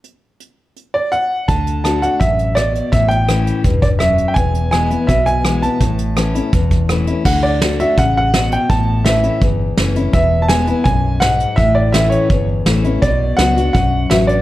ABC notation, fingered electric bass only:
X:1
M:4/4
L:1/8
Q:1/4=166
K:D
V:1 name="Fingered electric bass" clef=bass
z8 | D,,4 A,,,4 | A,,,4 E,,,4 | E,,,4 B,,,4 |
A,,,4 E,,,4 | D,,4 A,,,4 | A,,,4 G,,,2 F,,,2 | E,,,4 B,,,4 |
A,,,4 G,,,2 A,,,2 | B,,,2 C,,2 B,,,2 A,,,2 |]